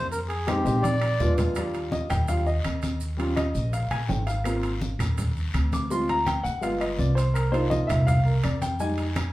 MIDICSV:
0, 0, Header, 1, 5, 480
1, 0, Start_track
1, 0, Key_signature, -3, "major"
1, 0, Tempo, 361664
1, 157, Time_signature, 4, 2, 24, 8
1, 12379, End_track
2, 0, Start_track
2, 0, Title_t, "Melodica"
2, 0, Program_c, 0, 22
2, 156, Note_on_c, 0, 70, 87
2, 265, Note_off_c, 0, 70, 0
2, 376, Note_on_c, 0, 68, 86
2, 617, Note_on_c, 0, 67, 86
2, 634, Note_off_c, 0, 68, 0
2, 1091, Note_on_c, 0, 74, 103
2, 1122, Note_off_c, 0, 67, 0
2, 1773, Note_off_c, 0, 74, 0
2, 12379, End_track
3, 0, Start_track
3, 0, Title_t, "Upright piano"
3, 0, Program_c, 1, 0
3, 624, Note_on_c, 1, 56, 85
3, 636, Note_on_c, 1, 63, 78
3, 638, Note_on_c, 1, 60, 76
3, 641, Note_on_c, 1, 67, 88
3, 798, Note_off_c, 1, 56, 0
3, 804, Note_off_c, 1, 63, 0
3, 805, Note_off_c, 1, 60, 0
3, 807, Note_off_c, 1, 67, 0
3, 855, Note_on_c, 1, 56, 80
3, 858, Note_on_c, 1, 60, 77
3, 862, Note_on_c, 1, 63, 70
3, 871, Note_on_c, 1, 67, 89
3, 1106, Note_off_c, 1, 56, 0
3, 1107, Note_off_c, 1, 60, 0
3, 1109, Note_off_c, 1, 63, 0
3, 1114, Note_off_c, 1, 67, 0
3, 1597, Note_on_c, 1, 56, 79
3, 1601, Note_on_c, 1, 59, 72
3, 1606, Note_on_c, 1, 62, 71
3, 1607, Note_on_c, 1, 65, 77
3, 2054, Note_off_c, 1, 62, 0
3, 2063, Note_off_c, 1, 65, 0
3, 2068, Note_on_c, 1, 55, 52
3, 2074, Note_on_c, 1, 62, 51
3, 2077, Note_off_c, 1, 56, 0
3, 2079, Note_off_c, 1, 59, 0
3, 2081, Note_on_c, 1, 74, 81
3, 2083, Note_on_c, 1, 65, 60
3, 2526, Note_off_c, 1, 74, 0
3, 2548, Note_on_c, 1, 75, 77
3, 2757, Note_off_c, 1, 55, 0
3, 2760, Note_off_c, 1, 62, 0
3, 2764, Note_off_c, 1, 65, 0
3, 2785, Note_on_c, 1, 79, 99
3, 2786, Note_off_c, 1, 75, 0
3, 3024, Note_off_c, 1, 79, 0
3, 3031, Note_on_c, 1, 62, 42
3, 3032, Note_on_c, 1, 55, 48
3, 3035, Note_on_c, 1, 65, 49
3, 3036, Note_on_c, 1, 77, 83
3, 3250, Note_off_c, 1, 55, 0
3, 3250, Note_off_c, 1, 62, 0
3, 3252, Note_off_c, 1, 65, 0
3, 3270, Note_off_c, 1, 77, 0
3, 3273, Note_on_c, 1, 75, 76
3, 3945, Note_off_c, 1, 75, 0
3, 4209, Note_on_c, 1, 55, 57
3, 4228, Note_on_c, 1, 61, 52
3, 4230, Note_on_c, 1, 65, 61
3, 4465, Note_on_c, 1, 75, 82
3, 4542, Note_off_c, 1, 55, 0
3, 4552, Note_off_c, 1, 61, 0
3, 4553, Note_off_c, 1, 65, 0
3, 4917, Note_off_c, 1, 75, 0
3, 4950, Note_on_c, 1, 77, 79
3, 5187, Note_off_c, 1, 77, 0
3, 5189, Note_on_c, 1, 80, 101
3, 5423, Note_on_c, 1, 79, 71
3, 5426, Note_off_c, 1, 80, 0
3, 5662, Note_on_c, 1, 77, 83
3, 5663, Note_off_c, 1, 79, 0
3, 5895, Note_on_c, 1, 58, 54
3, 5899, Note_on_c, 1, 60, 50
3, 5915, Note_on_c, 1, 65, 57
3, 6224, Note_off_c, 1, 58, 0
3, 6226, Note_off_c, 1, 60, 0
3, 6235, Note_off_c, 1, 65, 0
3, 6338, Note_off_c, 1, 77, 0
3, 7610, Note_on_c, 1, 86, 96
3, 7834, Note_on_c, 1, 56, 54
3, 7836, Note_off_c, 1, 86, 0
3, 7841, Note_on_c, 1, 60, 51
3, 7848, Note_on_c, 1, 65, 67
3, 7848, Note_on_c, 1, 84, 92
3, 8075, Note_off_c, 1, 84, 0
3, 8089, Note_on_c, 1, 82, 110
3, 8154, Note_off_c, 1, 56, 0
3, 8158, Note_off_c, 1, 60, 0
3, 8161, Note_off_c, 1, 65, 0
3, 8314, Note_on_c, 1, 79, 91
3, 8315, Note_off_c, 1, 82, 0
3, 8541, Note_on_c, 1, 78, 98
3, 8547, Note_off_c, 1, 79, 0
3, 8775, Note_on_c, 1, 56, 58
3, 8781, Note_off_c, 1, 78, 0
3, 8792, Note_on_c, 1, 59, 52
3, 8792, Note_on_c, 1, 65, 66
3, 8793, Note_on_c, 1, 77, 89
3, 9027, Note_off_c, 1, 77, 0
3, 9034, Note_on_c, 1, 75, 75
3, 9267, Note_off_c, 1, 75, 0
3, 9279, Note_on_c, 1, 74, 78
3, 9469, Note_off_c, 1, 56, 0
3, 9477, Note_off_c, 1, 59, 0
3, 9477, Note_off_c, 1, 65, 0
3, 9492, Note_on_c, 1, 72, 87
3, 9510, Note_off_c, 1, 74, 0
3, 9736, Note_off_c, 1, 72, 0
3, 9738, Note_on_c, 1, 70, 85
3, 9974, Note_on_c, 1, 58, 58
3, 9978, Note_on_c, 1, 72, 90
3, 9979, Note_off_c, 1, 70, 0
3, 9980, Note_on_c, 1, 62, 54
3, 9981, Note_on_c, 1, 63, 53
3, 9988, Note_on_c, 1, 65, 62
3, 10219, Note_off_c, 1, 72, 0
3, 10220, Note_on_c, 1, 75, 85
3, 10446, Note_on_c, 1, 76, 90
3, 10460, Note_off_c, 1, 75, 0
3, 10668, Note_off_c, 1, 58, 0
3, 10671, Note_off_c, 1, 62, 0
3, 10672, Note_off_c, 1, 63, 0
3, 10675, Note_off_c, 1, 65, 0
3, 10693, Note_off_c, 1, 76, 0
3, 10706, Note_on_c, 1, 77, 103
3, 10943, Note_off_c, 1, 77, 0
3, 10949, Note_on_c, 1, 70, 61
3, 11185, Note_off_c, 1, 70, 0
3, 11199, Note_on_c, 1, 74, 80
3, 11430, Note_off_c, 1, 74, 0
3, 11436, Note_on_c, 1, 79, 96
3, 11668, Note_off_c, 1, 79, 0
3, 11674, Note_on_c, 1, 55, 54
3, 11682, Note_on_c, 1, 63, 61
3, 11683, Note_on_c, 1, 56, 52
3, 11683, Note_on_c, 1, 80, 95
3, 11994, Note_off_c, 1, 55, 0
3, 11998, Note_off_c, 1, 63, 0
3, 11999, Note_off_c, 1, 56, 0
3, 12379, Note_off_c, 1, 80, 0
3, 12379, End_track
4, 0, Start_track
4, 0, Title_t, "Upright bass"
4, 0, Program_c, 2, 32
4, 0, Note_on_c, 2, 41, 84
4, 801, Note_off_c, 2, 41, 0
4, 861, Note_on_c, 2, 34, 92
4, 1538, Note_off_c, 2, 34, 0
4, 1592, Note_on_c, 2, 39, 79
4, 2718, Note_off_c, 2, 39, 0
4, 2800, Note_on_c, 2, 39, 92
4, 3469, Note_off_c, 2, 39, 0
4, 3519, Note_on_c, 2, 39, 80
4, 4641, Note_off_c, 2, 39, 0
4, 4708, Note_on_c, 2, 34, 92
4, 5159, Note_off_c, 2, 34, 0
4, 5187, Note_on_c, 2, 34, 67
4, 5415, Note_off_c, 2, 34, 0
4, 5433, Note_on_c, 2, 32, 83
4, 6558, Note_off_c, 2, 32, 0
4, 6621, Note_on_c, 2, 39, 89
4, 7298, Note_off_c, 2, 39, 0
4, 7353, Note_on_c, 2, 38, 92
4, 8477, Note_off_c, 2, 38, 0
4, 8554, Note_on_c, 2, 31, 92
4, 9224, Note_off_c, 2, 31, 0
4, 9274, Note_on_c, 2, 36, 82
4, 10397, Note_off_c, 2, 36, 0
4, 10480, Note_on_c, 2, 36, 94
4, 11148, Note_off_c, 2, 36, 0
4, 11203, Note_on_c, 2, 41, 82
4, 12322, Note_off_c, 2, 41, 0
4, 12379, End_track
5, 0, Start_track
5, 0, Title_t, "Drums"
5, 152, Note_on_c, 9, 74, 77
5, 161, Note_on_c, 9, 70, 87
5, 169, Note_on_c, 9, 63, 32
5, 285, Note_off_c, 9, 74, 0
5, 294, Note_off_c, 9, 70, 0
5, 302, Note_off_c, 9, 63, 0
5, 399, Note_on_c, 9, 65, 70
5, 399, Note_on_c, 9, 70, 29
5, 401, Note_on_c, 9, 63, 33
5, 531, Note_off_c, 9, 65, 0
5, 531, Note_off_c, 9, 70, 0
5, 534, Note_off_c, 9, 63, 0
5, 631, Note_on_c, 9, 73, 70
5, 636, Note_on_c, 9, 63, 96
5, 636, Note_on_c, 9, 70, 30
5, 637, Note_on_c, 9, 65, 94
5, 641, Note_on_c, 9, 75, 70
5, 764, Note_off_c, 9, 73, 0
5, 769, Note_off_c, 9, 63, 0
5, 769, Note_off_c, 9, 70, 0
5, 770, Note_off_c, 9, 65, 0
5, 773, Note_off_c, 9, 75, 0
5, 873, Note_on_c, 9, 73, 71
5, 877, Note_on_c, 9, 70, 61
5, 885, Note_on_c, 9, 63, 69
5, 1006, Note_off_c, 9, 73, 0
5, 1010, Note_off_c, 9, 70, 0
5, 1018, Note_off_c, 9, 63, 0
5, 1113, Note_on_c, 9, 65, 68
5, 1115, Note_on_c, 9, 63, 91
5, 1119, Note_on_c, 9, 74, 78
5, 1122, Note_on_c, 9, 70, 87
5, 1246, Note_off_c, 9, 65, 0
5, 1248, Note_off_c, 9, 63, 0
5, 1252, Note_off_c, 9, 74, 0
5, 1255, Note_off_c, 9, 70, 0
5, 1345, Note_on_c, 9, 75, 70
5, 1348, Note_on_c, 9, 65, 85
5, 1360, Note_on_c, 9, 70, 29
5, 1478, Note_off_c, 9, 75, 0
5, 1481, Note_off_c, 9, 65, 0
5, 1493, Note_off_c, 9, 70, 0
5, 1591, Note_on_c, 9, 73, 70
5, 1592, Note_on_c, 9, 70, 32
5, 1596, Note_on_c, 9, 64, 76
5, 1724, Note_off_c, 9, 73, 0
5, 1725, Note_off_c, 9, 70, 0
5, 1728, Note_off_c, 9, 64, 0
5, 1828, Note_on_c, 9, 70, 69
5, 1830, Note_on_c, 9, 73, 76
5, 1831, Note_on_c, 9, 64, 87
5, 1834, Note_on_c, 9, 65, 69
5, 1961, Note_off_c, 9, 70, 0
5, 1963, Note_off_c, 9, 64, 0
5, 1963, Note_off_c, 9, 73, 0
5, 1967, Note_off_c, 9, 65, 0
5, 2059, Note_on_c, 9, 70, 81
5, 2068, Note_on_c, 9, 63, 32
5, 2074, Note_on_c, 9, 65, 88
5, 2074, Note_on_c, 9, 74, 64
5, 2076, Note_on_c, 9, 75, 59
5, 2192, Note_off_c, 9, 70, 0
5, 2200, Note_off_c, 9, 63, 0
5, 2207, Note_off_c, 9, 65, 0
5, 2207, Note_off_c, 9, 74, 0
5, 2208, Note_off_c, 9, 75, 0
5, 2301, Note_on_c, 9, 63, 35
5, 2309, Note_on_c, 9, 70, 29
5, 2317, Note_on_c, 9, 65, 68
5, 2433, Note_off_c, 9, 63, 0
5, 2441, Note_off_c, 9, 70, 0
5, 2450, Note_off_c, 9, 65, 0
5, 2546, Note_on_c, 9, 63, 96
5, 2552, Note_on_c, 9, 70, 31
5, 2559, Note_on_c, 9, 73, 66
5, 2679, Note_off_c, 9, 63, 0
5, 2685, Note_off_c, 9, 70, 0
5, 2691, Note_off_c, 9, 73, 0
5, 2788, Note_on_c, 9, 70, 65
5, 2791, Note_on_c, 9, 65, 86
5, 2792, Note_on_c, 9, 63, 32
5, 2792, Note_on_c, 9, 64, 76
5, 2792, Note_on_c, 9, 75, 66
5, 2796, Note_on_c, 9, 73, 68
5, 2921, Note_off_c, 9, 70, 0
5, 2924, Note_off_c, 9, 65, 0
5, 2925, Note_off_c, 9, 63, 0
5, 2925, Note_off_c, 9, 64, 0
5, 2925, Note_off_c, 9, 75, 0
5, 2928, Note_off_c, 9, 73, 0
5, 3023, Note_on_c, 9, 70, 82
5, 3032, Note_on_c, 9, 65, 70
5, 3033, Note_on_c, 9, 63, 31
5, 3042, Note_on_c, 9, 74, 72
5, 3156, Note_off_c, 9, 70, 0
5, 3164, Note_off_c, 9, 65, 0
5, 3166, Note_off_c, 9, 63, 0
5, 3175, Note_off_c, 9, 74, 0
5, 3269, Note_on_c, 9, 70, 30
5, 3270, Note_on_c, 9, 63, 31
5, 3402, Note_off_c, 9, 70, 0
5, 3403, Note_off_c, 9, 63, 0
5, 3511, Note_on_c, 9, 65, 86
5, 3511, Note_on_c, 9, 75, 65
5, 3512, Note_on_c, 9, 70, 30
5, 3517, Note_on_c, 9, 73, 67
5, 3521, Note_on_c, 9, 63, 82
5, 3643, Note_off_c, 9, 65, 0
5, 3644, Note_off_c, 9, 75, 0
5, 3645, Note_off_c, 9, 70, 0
5, 3650, Note_off_c, 9, 73, 0
5, 3653, Note_off_c, 9, 63, 0
5, 3745, Note_on_c, 9, 70, 67
5, 3753, Note_on_c, 9, 65, 70
5, 3755, Note_on_c, 9, 73, 69
5, 3760, Note_on_c, 9, 63, 79
5, 3878, Note_off_c, 9, 70, 0
5, 3886, Note_off_c, 9, 65, 0
5, 3888, Note_off_c, 9, 73, 0
5, 3893, Note_off_c, 9, 63, 0
5, 3987, Note_on_c, 9, 70, 77
5, 3997, Note_on_c, 9, 74, 67
5, 4007, Note_on_c, 9, 63, 31
5, 4120, Note_off_c, 9, 70, 0
5, 4129, Note_off_c, 9, 74, 0
5, 4140, Note_off_c, 9, 63, 0
5, 4235, Note_on_c, 9, 70, 28
5, 4242, Note_on_c, 9, 63, 34
5, 4243, Note_on_c, 9, 65, 72
5, 4367, Note_off_c, 9, 70, 0
5, 4375, Note_off_c, 9, 63, 0
5, 4376, Note_off_c, 9, 65, 0
5, 4465, Note_on_c, 9, 75, 67
5, 4473, Note_on_c, 9, 73, 70
5, 4474, Note_on_c, 9, 70, 29
5, 4475, Note_on_c, 9, 63, 94
5, 4476, Note_on_c, 9, 65, 92
5, 4598, Note_off_c, 9, 75, 0
5, 4605, Note_off_c, 9, 73, 0
5, 4606, Note_off_c, 9, 70, 0
5, 4607, Note_off_c, 9, 63, 0
5, 4609, Note_off_c, 9, 65, 0
5, 4708, Note_on_c, 9, 70, 62
5, 4712, Note_on_c, 9, 73, 64
5, 4713, Note_on_c, 9, 63, 32
5, 4841, Note_off_c, 9, 70, 0
5, 4845, Note_off_c, 9, 73, 0
5, 4846, Note_off_c, 9, 63, 0
5, 4953, Note_on_c, 9, 65, 63
5, 4953, Note_on_c, 9, 70, 83
5, 4953, Note_on_c, 9, 74, 71
5, 4955, Note_on_c, 9, 63, 33
5, 5085, Note_off_c, 9, 65, 0
5, 5085, Note_off_c, 9, 70, 0
5, 5086, Note_off_c, 9, 74, 0
5, 5088, Note_off_c, 9, 63, 0
5, 5188, Note_on_c, 9, 63, 30
5, 5190, Note_on_c, 9, 65, 91
5, 5199, Note_on_c, 9, 75, 64
5, 5201, Note_on_c, 9, 70, 27
5, 5321, Note_off_c, 9, 63, 0
5, 5322, Note_off_c, 9, 65, 0
5, 5331, Note_off_c, 9, 75, 0
5, 5334, Note_off_c, 9, 70, 0
5, 5425, Note_on_c, 9, 63, 77
5, 5431, Note_on_c, 9, 66, 70
5, 5433, Note_on_c, 9, 73, 67
5, 5444, Note_on_c, 9, 70, 30
5, 5558, Note_off_c, 9, 63, 0
5, 5564, Note_off_c, 9, 66, 0
5, 5565, Note_off_c, 9, 73, 0
5, 5576, Note_off_c, 9, 70, 0
5, 5666, Note_on_c, 9, 65, 68
5, 5673, Note_on_c, 9, 73, 71
5, 5682, Note_on_c, 9, 70, 63
5, 5799, Note_off_c, 9, 65, 0
5, 5806, Note_off_c, 9, 73, 0
5, 5814, Note_off_c, 9, 70, 0
5, 5897, Note_on_c, 9, 75, 62
5, 5911, Note_on_c, 9, 65, 90
5, 5913, Note_on_c, 9, 63, 34
5, 5916, Note_on_c, 9, 70, 85
5, 5919, Note_on_c, 9, 74, 69
5, 6030, Note_off_c, 9, 75, 0
5, 6044, Note_off_c, 9, 65, 0
5, 6046, Note_off_c, 9, 63, 0
5, 6049, Note_off_c, 9, 70, 0
5, 6051, Note_off_c, 9, 74, 0
5, 6149, Note_on_c, 9, 65, 67
5, 6151, Note_on_c, 9, 63, 36
5, 6161, Note_on_c, 9, 70, 28
5, 6282, Note_off_c, 9, 65, 0
5, 6283, Note_off_c, 9, 63, 0
5, 6294, Note_off_c, 9, 70, 0
5, 6390, Note_on_c, 9, 63, 95
5, 6393, Note_on_c, 9, 73, 70
5, 6404, Note_on_c, 9, 70, 31
5, 6523, Note_off_c, 9, 63, 0
5, 6525, Note_off_c, 9, 73, 0
5, 6536, Note_off_c, 9, 70, 0
5, 6626, Note_on_c, 9, 75, 69
5, 6633, Note_on_c, 9, 63, 32
5, 6633, Note_on_c, 9, 64, 80
5, 6638, Note_on_c, 9, 65, 90
5, 6638, Note_on_c, 9, 70, 63
5, 6640, Note_on_c, 9, 73, 71
5, 6759, Note_off_c, 9, 75, 0
5, 6765, Note_off_c, 9, 63, 0
5, 6765, Note_off_c, 9, 64, 0
5, 6771, Note_off_c, 9, 65, 0
5, 6771, Note_off_c, 9, 70, 0
5, 6773, Note_off_c, 9, 73, 0
5, 6872, Note_on_c, 9, 70, 87
5, 6873, Note_on_c, 9, 65, 63
5, 6873, Note_on_c, 9, 74, 74
5, 6874, Note_on_c, 9, 63, 32
5, 6874, Note_on_c, 9, 64, 68
5, 7005, Note_off_c, 9, 70, 0
5, 7006, Note_off_c, 9, 65, 0
5, 7006, Note_off_c, 9, 74, 0
5, 7007, Note_off_c, 9, 63, 0
5, 7007, Note_off_c, 9, 64, 0
5, 7112, Note_on_c, 9, 63, 35
5, 7122, Note_on_c, 9, 70, 27
5, 7245, Note_off_c, 9, 63, 0
5, 7255, Note_off_c, 9, 70, 0
5, 7351, Note_on_c, 9, 75, 67
5, 7354, Note_on_c, 9, 73, 74
5, 7358, Note_on_c, 9, 65, 93
5, 7359, Note_on_c, 9, 63, 75
5, 7361, Note_on_c, 9, 70, 31
5, 7484, Note_off_c, 9, 75, 0
5, 7487, Note_off_c, 9, 73, 0
5, 7491, Note_off_c, 9, 65, 0
5, 7492, Note_off_c, 9, 63, 0
5, 7494, Note_off_c, 9, 70, 0
5, 7595, Note_on_c, 9, 63, 89
5, 7601, Note_on_c, 9, 73, 67
5, 7602, Note_on_c, 9, 70, 67
5, 7604, Note_on_c, 9, 65, 67
5, 7728, Note_off_c, 9, 63, 0
5, 7734, Note_off_c, 9, 73, 0
5, 7735, Note_off_c, 9, 70, 0
5, 7737, Note_off_c, 9, 65, 0
5, 7835, Note_on_c, 9, 74, 67
5, 7843, Note_on_c, 9, 63, 32
5, 7843, Note_on_c, 9, 70, 86
5, 7968, Note_off_c, 9, 74, 0
5, 7975, Note_off_c, 9, 63, 0
5, 7976, Note_off_c, 9, 70, 0
5, 8077, Note_on_c, 9, 70, 28
5, 8084, Note_on_c, 9, 63, 33
5, 8088, Note_on_c, 9, 65, 71
5, 8209, Note_off_c, 9, 70, 0
5, 8217, Note_off_c, 9, 63, 0
5, 8220, Note_off_c, 9, 65, 0
5, 8313, Note_on_c, 9, 73, 75
5, 8317, Note_on_c, 9, 75, 68
5, 8318, Note_on_c, 9, 63, 98
5, 8321, Note_on_c, 9, 70, 29
5, 8329, Note_on_c, 9, 65, 84
5, 8445, Note_off_c, 9, 73, 0
5, 8450, Note_off_c, 9, 75, 0
5, 8451, Note_off_c, 9, 63, 0
5, 8454, Note_off_c, 9, 70, 0
5, 8462, Note_off_c, 9, 65, 0
5, 8554, Note_on_c, 9, 73, 69
5, 8557, Note_on_c, 9, 63, 36
5, 8565, Note_on_c, 9, 70, 69
5, 8687, Note_off_c, 9, 73, 0
5, 8690, Note_off_c, 9, 63, 0
5, 8698, Note_off_c, 9, 70, 0
5, 8793, Note_on_c, 9, 70, 78
5, 8795, Note_on_c, 9, 63, 35
5, 8798, Note_on_c, 9, 74, 76
5, 8803, Note_on_c, 9, 65, 67
5, 8926, Note_off_c, 9, 70, 0
5, 8927, Note_off_c, 9, 63, 0
5, 8931, Note_off_c, 9, 74, 0
5, 8936, Note_off_c, 9, 65, 0
5, 9033, Note_on_c, 9, 63, 31
5, 9039, Note_on_c, 9, 70, 28
5, 9041, Note_on_c, 9, 75, 61
5, 9042, Note_on_c, 9, 65, 82
5, 9165, Note_off_c, 9, 63, 0
5, 9172, Note_off_c, 9, 70, 0
5, 9174, Note_off_c, 9, 75, 0
5, 9175, Note_off_c, 9, 65, 0
5, 9272, Note_on_c, 9, 63, 83
5, 9274, Note_on_c, 9, 73, 68
5, 9284, Note_on_c, 9, 70, 32
5, 9405, Note_off_c, 9, 63, 0
5, 9407, Note_off_c, 9, 73, 0
5, 9417, Note_off_c, 9, 70, 0
5, 9517, Note_on_c, 9, 73, 75
5, 9522, Note_on_c, 9, 70, 67
5, 9526, Note_on_c, 9, 65, 68
5, 9650, Note_off_c, 9, 73, 0
5, 9654, Note_off_c, 9, 70, 0
5, 9658, Note_off_c, 9, 65, 0
5, 9755, Note_on_c, 9, 74, 69
5, 9760, Note_on_c, 9, 70, 79
5, 9762, Note_on_c, 9, 63, 33
5, 9762, Note_on_c, 9, 75, 65
5, 9772, Note_on_c, 9, 65, 84
5, 9888, Note_off_c, 9, 74, 0
5, 9893, Note_off_c, 9, 70, 0
5, 9894, Note_off_c, 9, 75, 0
5, 9895, Note_off_c, 9, 63, 0
5, 9905, Note_off_c, 9, 65, 0
5, 10000, Note_on_c, 9, 63, 32
5, 10000, Note_on_c, 9, 70, 26
5, 10010, Note_on_c, 9, 65, 67
5, 10132, Note_off_c, 9, 63, 0
5, 10133, Note_off_c, 9, 70, 0
5, 10142, Note_off_c, 9, 65, 0
5, 10236, Note_on_c, 9, 63, 107
5, 10236, Note_on_c, 9, 73, 67
5, 10239, Note_on_c, 9, 70, 31
5, 10368, Note_off_c, 9, 73, 0
5, 10369, Note_off_c, 9, 63, 0
5, 10372, Note_off_c, 9, 70, 0
5, 10476, Note_on_c, 9, 63, 35
5, 10476, Note_on_c, 9, 64, 82
5, 10477, Note_on_c, 9, 73, 69
5, 10480, Note_on_c, 9, 70, 66
5, 10483, Note_on_c, 9, 75, 65
5, 10486, Note_on_c, 9, 65, 97
5, 10608, Note_off_c, 9, 63, 0
5, 10608, Note_off_c, 9, 64, 0
5, 10610, Note_off_c, 9, 73, 0
5, 10613, Note_off_c, 9, 70, 0
5, 10616, Note_off_c, 9, 75, 0
5, 10618, Note_off_c, 9, 65, 0
5, 10715, Note_on_c, 9, 63, 32
5, 10715, Note_on_c, 9, 64, 69
5, 10721, Note_on_c, 9, 70, 84
5, 10724, Note_on_c, 9, 74, 81
5, 10727, Note_on_c, 9, 65, 65
5, 10848, Note_off_c, 9, 63, 0
5, 10848, Note_off_c, 9, 64, 0
5, 10853, Note_off_c, 9, 70, 0
5, 10857, Note_off_c, 9, 74, 0
5, 10859, Note_off_c, 9, 65, 0
5, 10960, Note_on_c, 9, 63, 32
5, 10969, Note_on_c, 9, 70, 26
5, 11092, Note_off_c, 9, 63, 0
5, 11101, Note_off_c, 9, 70, 0
5, 11195, Note_on_c, 9, 65, 95
5, 11199, Note_on_c, 9, 63, 78
5, 11201, Note_on_c, 9, 73, 70
5, 11202, Note_on_c, 9, 75, 64
5, 11210, Note_on_c, 9, 70, 30
5, 11328, Note_off_c, 9, 65, 0
5, 11332, Note_off_c, 9, 63, 0
5, 11334, Note_off_c, 9, 73, 0
5, 11335, Note_off_c, 9, 75, 0
5, 11342, Note_off_c, 9, 70, 0
5, 11436, Note_on_c, 9, 63, 82
5, 11438, Note_on_c, 9, 73, 72
5, 11441, Note_on_c, 9, 65, 65
5, 11441, Note_on_c, 9, 70, 75
5, 11569, Note_off_c, 9, 63, 0
5, 11570, Note_off_c, 9, 73, 0
5, 11573, Note_off_c, 9, 70, 0
5, 11574, Note_off_c, 9, 65, 0
5, 11674, Note_on_c, 9, 70, 90
5, 11681, Note_on_c, 9, 74, 73
5, 11806, Note_off_c, 9, 70, 0
5, 11814, Note_off_c, 9, 74, 0
5, 11916, Note_on_c, 9, 65, 72
5, 11919, Note_on_c, 9, 70, 29
5, 11922, Note_on_c, 9, 63, 35
5, 12049, Note_off_c, 9, 65, 0
5, 12052, Note_off_c, 9, 70, 0
5, 12055, Note_off_c, 9, 63, 0
5, 12153, Note_on_c, 9, 73, 76
5, 12154, Note_on_c, 9, 70, 30
5, 12157, Note_on_c, 9, 63, 106
5, 12161, Note_on_c, 9, 75, 72
5, 12162, Note_on_c, 9, 65, 99
5, 12286, Note_off_c, 9, 73, 0
5, 12287, Note_off_c, 9, 70, 0
5, 12290, Note_off_c, 9, 63, 0
5, 12294, Note_off_c, 9, 75, 0
5, 12295, Note_off_c, 9, 65, 0
5, 12379, End_track
0, 0, End_of_file